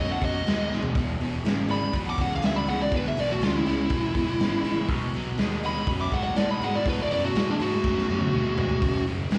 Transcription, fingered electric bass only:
Already playing: F#2
0.22 F#2
0.46 D#2
0.70 A1
0.95 E1
1.19 E1
1.44 G#1
1.94 B1
2.18 C#2
2.42 D2
2.65 C#2
2.92 D2
3.16 B1
3.40 D2
3.66 C#2
3.90 B1
4.15 B1
4.39 G#1
4.63 A1
4.89 B1
5.12 B1
5.37 D#2
5.87 F#2
6.12 G#2
6.36 A2
6.61 G#2
6.86 A2
7.11 F#2
7.35 A2
7.60 G#2
7.85 F#2
8.09 F#2
8.34 D#2
8.58 G#1
8.82 F#1
9.07 F#1
9.30 A#1

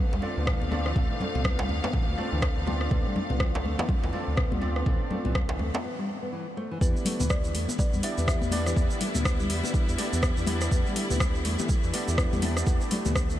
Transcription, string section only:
Already playing: D3 A3 F5
6.81 D3 G3 B3 E4
10.72 A3

